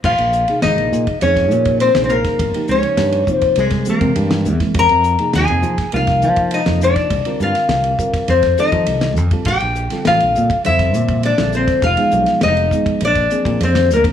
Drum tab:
CC |x---------------|----------------|----------------|----------------|
RD |-x-xxx-xxx-xxx-x|xx-xxx-xxx-xxx-x|xx-xxx-xxx-xxx-x|xx-xxx-xxx-xxx-x|
HH |--p---p---p---p-|--p---p---p---p-|--p---p---p---p-|--p---p---p---p-|
SD |----o----o---o-o|----o----o---o-o|----o--o-o---o-o|---oo--o-o---o--|
BD |o------o-o-o---o|o-----oo-o-o---o|o------o-o-o---o|o-----oo-o-o---o|

CC |----------------|----------------|
RD |xx-xxx-xxx-xxx-x|xx-xxx-xxx-xxx-x|
HH |--p---p---p---p-|--p---p---p---p-|
SD |---oo----o---o-o|---oo--------o--|
BD |o------o-o-o---o|o-----oo-o-o---o|